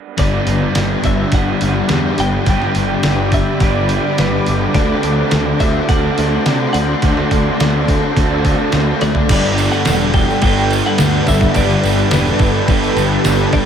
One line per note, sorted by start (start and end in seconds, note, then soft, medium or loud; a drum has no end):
0.17 0.37 G1 medium
0.17 1.05 G2 medium
0.17 1.03 D3 medium
0.17 1.32 G3 medium
0.17 1.02 G3 loud
0.17 1.34 B3 medium
0.17 1.33 D4 medium
0.17 4.72 G4 medium
0.17 1.34 B4 medium
0.17 9.25 D5 medium
0.17 1.05 D5 medium
0.17 4.71 B5 medium
0.17 6.99 D6 medium
0.17 kick loud
0.17 open hi-hat medium
0.47 0.66 G1 medium
0.47 open hi-hat medium
0.75 0.95 G1 medium
0.75 snare loud
0.75 open hi-hat medium
1.02 1.23 G1 medium
1.02 1.87 G2 medium
1.02 1.89 D3 medium
1.02 1.87 G3 medium
1.02 1.34 E5 medium
1.02 kick medium
1.02 open hi-hat medium
1.32 1.52 G1 medium
1.32 2.45 G3 medium
1.32 2.46 B3 medium
1.32 2.46 D4 medium
1.32 2.46 B4 medium
1.32 1.87 F#5 loud
1.32 kick loud
1.32 open hi-hat medium
1.61 1.81 G1 medium
1.61 open hi-hat medium
1.88 2.09 E2 medium
1.88 2.44 G2 medium
1.88 2.45 D3 medium
1.88 2.46 G3 medium
1.88 snare medium
1.88 open hi-hat medium
2.18 2.37 G1 medium
2.18 2.48 G5 medium
2.18 open hi-hat medium
2.45 2.66 G1 medium
2.45 3.30 G2 medium
2.45 3.31 D3 medium
2.45 3.59 G3 medium
2.45 3.30 G3 medium
2.45 3.60 B3 medium
2.45 3.61 D4 medium
2.45 3.60 B4 medium
2.45 kick loud
2.45 open hi-hat medium
2.49 3.34 G5 loud
2.62 snare soft
2.75 2.95 G1 medium
2.75 open hi-hat medium
3.03 3.42 G1 medium
3.03 snare loud
3.03 open hi-hat medium
3.31 4.16 G2 medium
3.31 4.17 D3 medium
3.31 4.16 G3 medium
3.31 3.63 E5 medium
3.31 kick medium
3.31 open hi-hat medium
3.60 3.98 G1 medium
3.60 4.73 G3 medium
3.60 4.74 B3 medium
3.60 4.75 D4 medium
3.60 4.74 B4 medium
3.60 4.19 D5 loud
3.60 kick loud
3.60 open hi-hat medium
3.89 open hi-hat soft
4.17 4.38 G1 medium
4.17 4.73 G2 medium
4.17 4.72 D3 medium
4.17 4.74 G3 medium
4.17 4.59 B4 medium
4.17 snare loud
4.17 open hi-hat medium
4.46 4.66 G1 medium
4.46 open hi-hat soft
4.73 4.94 D2 medium
4.73 5.62 D3 medium
4.73 5.87 D3 medium
4.73 5.61 A3 medium
4.73 5.88 C4 medium
4.73 5.59 D4 medium
4.73 5.89 F#4 medium
4.73 9.25 A4 medium
4.73 5.90 A4 medium
4.73 5.28 D5 medium
4.73 9.25 C6 medium
4.73 kick loud
4.73 open hi-hat medium
5.03 5.22 D2 medium
5.03 open hi-hat medium
5.31 5.52 D2 medium
5.31 snare loud
5.31 open hi-hat medium
5.59 5.79 D2 medium
5.59 6.44 D3 medium
5.59 6.45 A3 medium
5.59 6.48 D4 medium
5.59 5.87 E5 loud
5.59 kick medium
5.59 open hi-hat medium
5.88 6.08 D2 medium
5.88 7.00 D3 medium
5.88 7.01 C4 medium
5.88 7.04 F#4 medium
5.88 7.02 A4 medium
5.88 6.72 F#5 loud
5.88 kick loud
5.88 open hi-hat medium
6.18 6.37 D2 medium
6.18 open hi-hat medium
6.46 6.65 C3 medium
6.46 7.01 D3 medium
6.46 7.02 A3 medium
6.46 7.05 D4 medium
6.46 snare loud
6.46 open hi-hat medium
6.73 6.93 D2 medium
6.73 8.68 F#5 medium
6.73 open hi-hat medium
7.02 7.21 D2 medium
7.02 7.86 D3 medium
7.02 8.14 D3 medium
7.02 7.87 A3 medium
7.02 8.15 C4 medium
7.02 7.85 D4 loud
7.02 8.15 F#4 medium
7.02 8.15 A4 medium
7.02 9.27 E6 medium
7.02 kick medium
7.02 open hi-hat medium
7.17 snare soft
7.31 7.50 D2 medium
7.31 kick medium
7.31 open hi-hat medium
7.60 7.98 D2 medium
7.60 snare loud
7.60 open hi-hat medium
7.87 8.71 D3 medium
7.87 8.72 A3 medium
7.87 8.71 D4 medium
7.87 kick medium
7.87 open hi-hat medium
8.17 8.54 D2 medium
8.17 9.28 D3 medium
8.17 9.28 C4 medium
8.17 9.29 F#4 medium
8.17 9.29 A4 medium
8.17 kick loud
8.17 open hi-hat medium
8.45 kick medium
8.45 open hi-hat medium
8.72 8.92 D2 medium
8.72 9.27 D3 medium
8.72 9.28 A3 medium
8.72 9.29 D4 medium
8.72 snare loud
8.72 open hi-hat medium
9.01 9.21 D2 medium
9.01 9.30 D5 medium
9.01 snare medium
9.01 open hi-hat soft
9.15 floor tom medium
9.28 9.68 G1 loud
9.28 9.84 G2 medium
9.28 9.85 D3 medium
9.28 13.65 G3 medium
9.28 10.41 G3 medium
9.28 10.43 B3 medium
9.28 13.65 D4 medium
9.28 10.42 D4 loud
9.28 13.65 G4 medium
9.28 13.65 A4 medium
9.28 13.65 B4 medium
9.28 9.71 D5 loud
9.28 kick loud
9.28 crash loud
9.28 tambourine medium
9.28 crash medium
9.32 9.87 G3 medium
9.32 10.43 B4 loud
9.45 tambourine soft
9.58 tambourine medium
9.58 crash medium
9.72 10.14 F#5 loud
9.72 tambourine soft
9.84 10.25 E1 medium
9.84 10.41 G2 medium
9.84 10.15 D3 medium
9.84 10.13 G3 medium
9.84 snare loud
9.84 tambourine loud
9.84 crash medium
10.13 10.42 D3 medium
10.13 10.43 G3 medium
10.13 10.42 G5 loud
10.13 kick medium
10.13 tambourine soft
10.13 crash medium
10.30 tambourine soft
10.42 10.80 G1 loud
10.42 10.97 G2 medium
10.42 10.98 D3 medium
10.42 11.53 G3 medium
10.42 11.00 G3 medium
10.42 11.55 B3 medium
10.42 11.55 D4 medium
10.42 11.55 B4 medium
10.42 10.82 G5 loud
10.42 kick loud
10.42 tambourine soft
10.42 crash medium
10.59 tambourine soft
10.71 tambourine medium
10.71 crash medium
10.86 11.25 F#5 loud
10.98 11.19 D2 medium
10.98 11.54 G2 medium
10.98 11.28 D3 medium
10.98 11.25 G3 medium
10.98 snare loud
10.98 tambourine loud
10.98 crash medium
11.26 11.46 G1 medium
11.26 11.55 D3 medium
11.26 11.57 G3 medium
11.26 11.54 E5 loud
11.26 kick medium
11.26 snare soft
11.26 tambourine medium
11.26 crash medium
11.41 kick medium
11.54 11.74 G1 loud
11.54 12.10 G2 loud
11.54 12.12 D3 medium
11.54 12.66 G3 medium
11.54 12.13 G3 loud
11.54 12.67 B3 medium
11.54 12.68 D4 loud
11.54 12.68 B4 loud
11.54 12.12 D5 loud
11.54 kick medium
11.54 tambourine medium
11.54 crash medium
11.70 tambourine soft
11.84 12.03 G1 medium
11.84 tambourine medium
11.84 crash medium
11.99 tambourine soft
12.11 12.31 E1 medium
12.11 12.67 G2 medium
12.11 12.41 D3 medium
12.11 12.38 G3 medium
12.11 13.22 B4 medium
12.11 snare loud
12.11 tambourine medium
12.11 crash medium
12.28 tambourine soft
12.39 12.59 G1 medium
12.39 12.68 D3 medium
12.39 12.70 G3 medium
12.39 kick medium
12.39 tambourine soft
12.39 crash medium
12.68 12.88 G1 medium
12.68 13.23 G2 medium
12.68 13.25 D3 medium
12.68 13.65 G3 medium
12.68 13.26 G3 medium
12.68 13.65 B3 medium
12.68 13.65 D4 medium
12.68 13.65 B4 medium
12.68 kick loud
12.68 tambourine soft
12.68 crash medium
12.84 tambourine soft
12.96 13.16 G1 loud
12.96 tambourine medium
12.96 crash medium
13.24 13.45 G1 medium
13.24 13.65 G2 medium
13.24 13.54 D3 medium
13.24 13.51 G3 medium
13.24 snare loud
13.24 tambourine loud
13.24 crash medium
13.52 13.65 G1 medium
13.52 13.65 D3 medium
13.52 13.65 G3 medium
13.52 13.65 D5 medium
13.52 kick medium
13.52 snare soft
13.52 crash medium